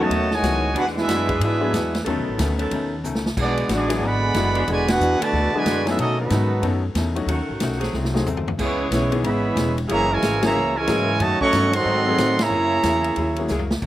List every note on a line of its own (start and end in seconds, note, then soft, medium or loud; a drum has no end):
0.00 0.32 D#3 medium
0.00 0.32 F#3 medium
0.00 0.32 A3 medium
0.00 0.10 D#4 medium
0.00 0.32 F#4 medium
0.00 0.10 A4 medium
0.00 0.33 C#5 medium
0.00 0.31 D#5 loud
0.00 0.33 A5 loud
0.10 0.41 D#2 medium
0.10 0.33 B2 medium
0.10 0.34 D#3 medium
0.10 0.34 A3 medium
0.10 ride medium
0.14 0.34 C#4 medium
0.31 0.76 A2 medium
0.31 0.77 D#3 medium
0.31 0.76 G#3 medium
0.31 0.77 F#4 loud
0.31 0.77 C#5 loud
0.31 0.77 D#5 loud
0.31 0.77 G#5 loud
0.31 snare medium
0.42 0.73 C#2 medium
0.42 0.65 B2 medium
0.42 0.65 D#3 medium
0.42 0.62 F#3 medium
0.42 0.66 A3 medium
0.42 0.62 B3 medium
0.42 0.62 C#4 medium
0.42 0.66 C#4 medium
0.42 0.62 D#4 medium
0.42 0.62 A4 medium
0.42 snare medium
0.42 hi-hat pedal medium
0.42 ride medium
0.73 1.07 E2 medium
0.73 1.24 E3 loud
0.73 0.97 E3 medium
0.73 1.24 G#3 loud
0.73 0.98 G#3 medium
0.73 0.85 B3 medium
0.73 1.24 D4 medium
0.73 0.84 D4 medium
0.73 0.86 D4 medium
0.73 1.24 F#4 loud
0.73 0.85 F#4 medium
0.73 0.86 B4 medium
0.73 ride medium
0.77 0.98 D4 medium
0.77 0.99 F#4 medium
0.77 0.87 G#4 medium
0.77 0.87 F#5 loud
0.87 snare soft
0.96 1.38 G#3 medium
0.96 1.38 B3 medium
0.96 1.39 D4 medium
0.96 1.38 E4 medium
0.96 1.39 G#4 medium
0.96 1.39 B4 medium
0.96 1.39 E5 loud
0.96 snare medium
1.08 1.39 F#2 medium
1.08 1.30 E3 medium
1.08 1.30 G#3 medium
1.08 1.30 D4 medium
1.08 1.31 F#4 medium
1.08 snare medium
1.08 hi-hat pedal medium
1.08 ride medium
1.26 1.70 E3 loud
1.26 1.70 G#3 loud
1.26 1.70 D4 loud
1.26 1.70 G#4 loud
1.26 kick medium
1.26 ride medium
1.40 1.72 G#2 medium
1.40 1.63 E3 medium
1.40 1.64 G#3 medium
1.40 2.03 G#3 medium
1.40 2.03 B3 medium
1.40 1.64 D4 medium
1.40 2.03 E4 medium
1.40 1.64 F#4 medium
1.40 2.04 E5 medium
1.40 ride medium
1.44 2.04 D4 medium
1.44 2.04 G#4 medium
1.44 2.04 B4 medium
1.61 1.72 F#3 medium
1.61 1.72 B3 medium
1.61 1.72 D4 medium
1.61 1.72 E4 medium
1.61 1.73 G#4 medium
1.73 2.05 E2 loud
1.73 1.95 E3 medium
1.73 1.95 G#3 medium
1.73 1.96 D4 medium
1.73 1.96 F#4 medium
1.73 snare medium
1.73 hi-hat pedal medium
1.73 ride medium
1.95 snare medium
1.95 ride medium
2.04 2.18 D#2 medium
2.04 2.28 B2 medium
2.04 2.55 D#3 loud
2.04 2.28 D#3 medium
2.04 2.97 F#3 medium
2.04 2.54 B3 loud
2.04 2.98 B3 medium
2.04 2.54 C#4 loud
2.04 2.98 C#4 medium
2.04 2.54 A4 loud
2.04 ride medium
2.08 2.29 A3 medium
2.08 2.29 C#4 medium
2.08 2.98 D#4 medium
2.08 2.98 A4 medium
2.17 2.27 B1 medium
2.28 2.38 A1 medium
2.38 2.70 D2 medium
2.38 2.60 B2 medium
2.38 2.61 D#3 medium
2.38 2.61 A3 medium
2.38 2.62 C#4 medium
2.38 snare medium
2.38 hi-hat pedal medium
2.38 ride medium
2.58 3.01 D#3 loud
2.58 3.01 B3 medium
2.58 3.01 C#4 medium
2.58 3.02 A4 loud
2.58 ride medium
2.71 3.03 D#2 loud
2.71 2.93 B2 medium
2.71 2.94 D#3 medium
2.71 2.94 A3 medium
2.71 2.95 C#4 medium
2.71 ride medium
3.04 3.36 C#2 medium
3.04 3.26 B2 medium
3.04 3.26 D#3 medium
3.04 3.27 A3 medium
3.04 3.27 C#4 medium
3.04 hi-hat pedal medium
3.15 snare medium
3.26 snare loud
3.37 3.68 B1 medium
3.37 3.59 E3 medium
3.37 3.59 G#3 medium
3.37 3.69 G#3 medium
3.37 3.69 B3 medium
3.37 3.68 D4 medium
3.37 3.60 D4 medium
3.37 3.60 F#4 medium
3.37 3.69 G#4 medium
3.37 3.69 D5 loud
3.37 kick medium
3.37 crash medium
3.41 3.70 B3 medium
3.41 3.69 F#4 medium
3.57 ride medium
3.68 4.01 A1 medium
3.68 3.91 E3 medium
3.68 3.92 G#3 medium
3.68 4.01 B3 medium
3.68 3.92 D4 medium
3.68 3.92 F#4 medium
3.68 snare medium
3.68 hi-hat pedal medium
3.68 ride medium
3.73 4.01 G#3 medium
3.73 4.02 B3 medium
3.73 4.02 D4 medium
3.73 4.02 F#4 medium
3.73 4.02 G#4 medium
3.73 4.03 D5 medium
3.89 4.00 F#3 medium
3.89 4.01 B3 medium
3.89 4.01 D4 medium
3.89 4.01 E4 medium
3.89 4.01 G#4 medium
3.89 snare soft
3.89 ride medium
4.01 4.33 G#1 medium
4.01 4.66 D3 loud
4.01 4.24 E3 medium
4.01 4.24 G#3 soft
4.01 4.66 G#3 loud
4.01 4.69 B3 loud
4.01 4.25 D4 medium
4.01 4.25 F#4 medium
4.01 4.69 G#4 medium
4.01 4.69 D5 loud
4.01 4.69 F#5 medium
4.06 4.69 B5 loud
4.34 4.66 F#1 medium
4.34 4.56 E3 medium
4.34 4.54 F#3 medium
4.34 4.57 G#3 medium
4.34 4.54 B3 medium
4.34 4.57 D4 medium
4.34 4.54 D4 medium
4.34 4.54 E4 medium
4.34 4.57 F#4 medium
4.34 4.54 G#4 medium
4.34 snare medium
4.34 hi-hat pedal medium
4.34 ride medium
4.55 4.63 E3 loud
4.55 4.63 G#3 loud
4.55 4.63 D4 medium
4.55 4.63 F#4 loud
4.55 ride medium
4.67 4.99 E1 loud
4.67 4.86 B2 medium
4.67 4.86 D3 medium
4.67 4.89 E3 medium
4.67 4.86 G#3 medium
4.67 4.90 G#3 medium
4.67 4.90 D4 medium
4.67 4.90 F#4 medium
4.67 ride medium
4.72 4.89 F#4 medium
4.72 4.89 B4 medium
4.72 4.89 D5 medium
4.72 4.89 G#5 loud
4.88 5.21 B3 medium
4.88 5.21 D4 medium
4.88 5.22 D4 medium
4.88 5.21 F#4 medium
4.88 5.22 G#4 medium
4.88 5.22 B4 medium
4.88 5.21 F#5 loud
4.88 snare loud
4.88 ride medium
5.00 5.19 E2 medium
5.00 5.22 E3 medium
5.00 5.22 G#3 medium
5.00 5.23 D4 medium
5.00 5.23 F#4 medium
5.00 hi-hat pedal medium
5.20 5.51 B2 medium
5.20 5.52 D3 medium
5.20 5.53 A3 medium
5.20 5.54 F#4 medium
5.20 5.54 B4 loud
5.20 5.54 D5 medium
5.20 5.54 A5 loud
5.20 muted upright bass stroke soft
5.20 ride medium
5.33 5.52 D2 medium
5.33 5.54 E3 medium
5.33 5.55 G#3 medium
5.33 5.55 D4 medium
5.33 5.56 F#4 medium
5.52 5.85 B2 medium
5.52 5.86 D3 medium
5.52 5.64 F#3 medium
5.52 5.85 G#3 medium
5.52 5.65 B3 medium
5.52 5.65 D4 medium
5.52 5.65 E4 medium
5.52 5.87 F#4 loud
5.52 5.65 G#4 medium
5.52 5.87 B4 medium
5.52 5.87 D5 medium
5.52 muted upright bass stroke soft
5.56 5.87 G#5 loud
5.65 5.97 F#2 loud
5.65 5.87 E3 medium
5.65 5.80 E3 medium
5.65 5.88 G#3 medium
5.65 5.81 G#3 medium
5.65 5.88 D4 medium
5.65 5.81 D4 medium
5.65 5.80 F#4 loud
5.65 5.88 F#4 medium
5.65 snare medium
5.65 hi-hat pedal medium
5.65 ride medium
5.85 6.28 F#3 medium
5.85 5.98 G#3 medium
5.85 6.28 B3 medium
5.85 5.99 B3 medium
5.85 6.28 C#4 medium
5.85 5.99 D4 medium
5.85 6.28 D#4 medium
5.85 5.98 E4 medium
5.85 5.98 G#4 medium
5.85 6.28 A4 medium
5.85 5.98 B4 medium
5.85 5.98 E5 medium
5.85 snare medium
5.85 ride medium
5.97 6.29 B2 medium
5.97 6.20 B2 medium
5.97 6.20 D#3 soft
5.97 6.18 F#3 medium
5.97 6.17 A3 medium
5.97 6.21 A3 medium
5.97 6.19 C#4 medium
5.97 6.21 C#4 medium
5.97 6.17 D#4 medium
5.97 6.18 F#4 medium
5.97 6.18 A4 medium
5.97 6.18 D#5 loud
5.97 ride medium
6.18 6.80 D#3 medium
6.18 6.80 F#3 medium
6.18 6.80 B3 medium
6.18 6.81 D#4 medium
6.18 6.81 F#4 medium
6.18 6.80 A4 medium
6.18 6.80 B4 medium
6.30 6.62 G#2 loud
6.30 6.52 B2 medium
6.30 6.53 D#3 medium
6.30 6.53 A3 medium
6.30 6.53 C#4 medium
6.30 snare medium
6.30 hi-hat pedal medium
6.30 ride medium
6.62 6.94 F#2 medium
6.62 6.85 B2 medium
6.62 6.85 D#3 medium
6.62 6.81 F#3 medium
6.62 6.86 A3 medium
6.62 6.81 B3 medium
6.62 6.81 C#4 medium
6.62 6.86 C#4 medium
6.62 6.81 D#4 medium
6.62 6.82 A4 medium
6.62 ride medium
6.95 7.26 E2 medium
6.95 7.18 B2 medium
6.95 7.18 D#3 medium
6.95 7.18 A3 medium
6.95 7.19 C#4 medium
6.95 snare medium
6.95 hi-hat pedal medium
6.95 ride medium
7.15 7.27 F#3 medium
7.15 7.27 A3 medium
7.15 7.27 C#4 medium
7.15 7.27 D#4 medium
7.15 7.27 F#4 medium
7.15 ride medium
7.26 7.39 D#2 medium
7.26 7.50 D#3 medium
7.26 7.78 D#3 loud
7.26 7.51 A3 medium
7.26 7.78 A3 medium
7.26 7.78 C#4 medium
7.26 7.77 F#4 loud
7.26 ride medium
7.30 7.51 C#4 medium
7.30 7.51 F#4 medium
7.38 7.49 C#2 medium
7.49 7.60 A1 medium
7.60 7.92 B1 medium
7.60 7.83 D#3 medium
7.60 7.83 A3 medium
7.60 7.84 C#4 medium
7.60 7.84 F#4 medium
7.60 snare medium
7.60 hi-hat pedal medium
7.60 ride medium
7.72 snare soft
7.80 8.23 F#3 medium
7.80 8.23 A3 medium
7.80 8.23 C4 medium
7.80 8.23 G#4 loud
7.80 snare medium
7.80 ride medium
7.93 8.24 C2 medium
7.93 8.15 G#2 medium
7.93 8.16 F#3 medium
7.93 8.16 A3 medium
7.93 8.17 C4 medium
7.93 snare medium
8.05 snare medium
8.14 8.25 F#3 medium
8.14 8.25 A3 medium
8.14 8.25 C4 medium
8.14 8.26 D#4 medium
8.14 8.26 G#4 medium
8.14 snare medium
8.24 8.57 D#2 medium
8.24 8.48 G#2 medium
8.24 8.48 F#3 medium
8.24 8.49 A3 medium
8.24 8.49 C4 medium
8.24 floor tom medium
8.24 hi-hat pedal medium
8.37 floor tom medium
8.48 floor tom loud
8.58 8.90 C#2 medium
8.58 8.80 C#3 soft
8.58 8.89 E3 medium
8.58 9.50 E3 loud
8.58 8.89 G#3 medium
8.58 8.81 G#3 medium
8.58 8.81 B3 medium
8.58 9.50 B3 medium
8.58 8.89 C#4 medium
8.58 9.50 C#4 loud
8.58 8.82 E4 medium
8.58 9.50 G#4 loud
8.58 kick medium
8.58 crash medium
8.62 8.91 B3 medium
8.62 8.90 E4 medium
8.62 8.91 G#4 medium
8.62 8.91 C#5 medium
8.90 9.22 B1 medium
8.90 9.13 C#3 medium
8.90 9.17 E3 medium
8.90 9.16 G#3 medium
8.90 9.14 G#3 medium
8.90 9.18 B3 medium
8.90 9.14 B3 medium
8.90 9.17 C#4 medium
8.90 9.17 E4 medium
8.90 9.14 E4 medium
8.90 9.18 G#4 medium
8.90 9.18 C#5 medium
8.90 snare medium
8.90 hi-hat pedal medium
8.90 ride medium
9.11 9.23 E3 medium
9.11 9.23 B3 medium
9.11 9.23 C#4 medium
9.11 9.23 D#4 medium
9.11 9.23 G#4 medium
9.11 ride medium
9.22 9.55 G#1 medium
9.22 9.46 C#3 medium
9.22 9.78 E3 loud
9.22 9.47 G#3 medium
9.22 9.78 G#3 medium
9.22 9.78 B3 medium
9.22 9.78 G#4 medium
9.22 9.77 C#5 medium
9.22 9.78 E5 medium
9.22 9.26 A#5 medium
9.22 9.77 B5 loud
9.22 ride medium
9.26 9.47 B3 medium
9.26 9.47 E4 medium
9.56 9.88 E1 medium
9.56 9.78 C#3 medium
9.56 9.79 G#3 medium
9.56 9.79 B3 medium
9.56 9.79 E4 medium
9.56 snare medium
9.56 hi-hat pedal medium
9.56 ride medium
9.78 ride medium
9.87 10.22 F#1 loud
9.87 10.09 C#3 medium
9.87 10.09 E3 medium
9.87 10.80 F#3 loud
9.87 10.11 F#3 medium
9.87 10.79 A#3 loud
9.87 10.12 A#3 medium
9.87 10.09 A#3 medium
9.87 10.79 E4 loud
9.87 10.12 E4 medium
9.87 10.79 G#4 loud
9.87 10.10 C#5 medium
9.87 10.10 E5 medium
9.87 10.09 A#5 loud
9.87 ride medium
9.92 10.10 G#4 medium
9.92 10.13 G#4 medium
10.10 10.41 C#3 loud
10.10 10.42 E3 medium
10.10 10.43 G#3 medium
10.10 10.44 E4 medium
10.10 10.44 A#4 medium
10.10 10.44 C#5 medium
10.10 10.44 G#5 loud
10.22 10.54 G#1 medium
10.22 10.44 F#3 medium
10.22 10.45 A#3 medium
10.22 10.45 E4 medium
10.22 10.45 G#4 medium
10.22 snare medium
10.22 hi-hat pedal medium
10.22 ride medium
10.41 10.73 C#3 medium
10.41 10.73 E3 medium
10.41 10.53 F#3 medium
10.41 10.53 A#3 medium
10.41 10.73 A#3 medium
10.41 10.54 C#4 medium
10.41 10.53 E4 medium
10.41 10.54 G#4 medium
10.41 10.74 G#4 medium
10.41 snare loud
10.41 ride medium
10.45 10.75 C#5 loud
10.45 10.74 E5 medium
10.45 10.75 A#5 loud
10.55 10.87 C#2 medium
10.55 10.77 F#3 soft
10.55 10.77 A#3 medium
10.55 10.78 E4 medium
10.55 10.78 G#4 medium
10.77 11.22 C#3 medium
10.77 11.22 E3 medium
10.77 11.22 G#3 medium
10.77 11.21 E4 loud
10.77 11.21 A#4 medium
10.77 11.20 C#5 loud
10.77 11.21 G#5 loud
10.87 11.19 G#2 medium
10.87 11.06 F#3 medium
10.87 11.10 F#3 medium
10.87 11.06 A#3 medium
10.87 11.10 A#3 medium
10.87 11.06 C#4 medium
10.87 11.07 E4 medium
10.87 11.10 E4 medium
10.87 11.07 G#4 medium
10.87 11.11 G#4 medium
10.87 snare medium
10.87 hi-hat pedal medium
10.87 ride medium
11.20 11.39 F#2 loud
11.20 11.42 B2 medium
11.20 11.41 D#3 medium
11.20 11.43 D#3 medium
11.20 11.41 F#3 medium
11.20 11.40 A3 medium
11.20 11.43 A3 medium
11.20 11.43 C#4 medium
11.20 11.41 F#4 medium
11.20 11.41 C#5 medium
11.20 11.40 D#5 medium
11.20 11.41 A5 loud
11.20 ride medium
11.41 11.72 F#3 loud
11.41 11.71 A3 loud
11.41 11.72 C#4 loud
11.41 11.72 A4 medium
11.41 11.72 D#5 loud
11.41 11.72 F#5 loud
11.41 11.71 C#6 loud
11.41 muted upright bass stroke soft
11.41 kick medium
11.52 11.85 G2 loud
11.52 11.75 B2 medium
11.52 11.67 D#3 medium
11.52 11.75 D#3 medium
11.52 11.75 A3 medium
11.52 11.67 B3 medium
11.52 11.68 C#4 medium
11.52 11.76 C#4 medium
11.52 11.67 A4 loud
11.52 snare medium
11.52 hi-hat pedal medium
11.52 ride medium
11.73 12.40 D#3 loud
11.73 12.40 F#3 loud
11.73 12.39 C4 loud
11.73 12.40 A4 loud
11.73 12.39 D#5 loud
11.73 12.39 F#5 loud
11.73 12.40 C6 loud
11.73 ride medium
11.85 12.07 G#2 medium
11.85 12.17 G#2 medium
11.85 11.99 F#3 medium
11.85 12.08 F#3 medium
11.85 12.00 A3 medium
11.85 12.08 A3 medium
11.85 11.99 C4 medium
11.85 12.08 C4 medium
11.85 12.00 D#4 medium
12.07 12.18 F#3 medium
12.07 12.18 A3 medium
12.07 12.18 C4 medium
12.07 12.18 D#4 medium
12.07 12.18 G#4 medium
12.17 12.40 G#2 medium
12.17 12.49 A2 medium
12.17 12.41 F#3 medium
12.17 12.41 A3 medium
12.17 12.41 C4 medium
12.17 snare medium
12.17 hi-hat pedal medium
12.17 ride medium
12.39 13.50 C#3 medium
12.39 13.51 A#3 medium
12.39 13.50 E4 medium
12.39 13.50 G#4 medium
12.39 13.50 C#5 medium
12.39 13.50 E5 medium
12.39 13.50 A#5 loud
12.39 snare loud
12.39 ride medium
12.50 12.82 F#2 medium
12.50 12.72 F#3 soft
12.50 12.73 A#3 medium
12.50 12.73 E4 medium
12.50 12.74 G#4 medium
12.83 13.15 E2 medium
12.83 13.05 F#3 medium
12.83 13.06 A#3 medium
12.83 13.06 E4 medium
12.83 13.06 G#4 medium
12.83 snare medium
12.83 hi-hat pedal medium
12.83 ride medium
13.04 ride medium
13.16 13.48 D#2 medium
13.16 13.39 F#3 medium
13.16 13.39 A#3 medium
13.16 13.39 E4 medium
13.16 13.40 G#4 medium
13.16 ride medium
13.36 13.49 F#3 medium
13.36 13.48 A#3 medium
13.36 13.49 C#4 medium
13.36 13.49 E4 medium
13.36 13.49 G#4 medium
13.36 ride medium
13.48 13.81 C#2 medium
13.48 13.71 F#3 medium
13.48 13.64 F#3 medium
13.48 13.71 A#3 medium
13.48 13.64 A#3 medium
13.48 13.63 E4 medium
13.48 13.72 E4 medium
13.48 13.64 G#4 loud
13.48 13.72 G#4 medium
13.48 snare medium
13.48 hi-hat pedal medium
13.59 floor tom medium
13.71 snare loud
13.81 13.86 B1 medium
13.81 13.86 B2 medium
13.81 13.86 D#3 medium
13.81 kick medium
13.81 crash medium